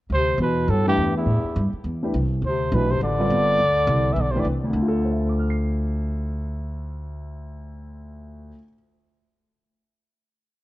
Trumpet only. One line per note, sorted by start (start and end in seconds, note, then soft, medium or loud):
0.14 0.39 C5 medium
0.42 0.72 B4 medium
0.70 0.87 A4 medium
0.88 1.14 G4 loud
1.18 1.71 E4 medium
2.46 2.77 C5 medium
2.75 2.92 B4 medium
2.91 3.02 C5 medium
3.03 4.14 D5 loud
4.13 4.23 E5 medium
4.21 4.33 D5 medium
4.31 4.42 C5 medium
4.40 4.47 D5 medium